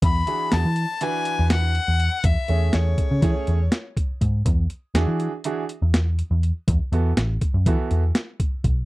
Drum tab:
HH |xxxxxxxxx|xxxxxxxxx|xxxxxxxxx|xxxxxxxxx|
SD |--o---o--|--o-o-o--|--o---o--|--o---o--|
BD |o--------|o--oo--oo|o--------|o--oo--oo|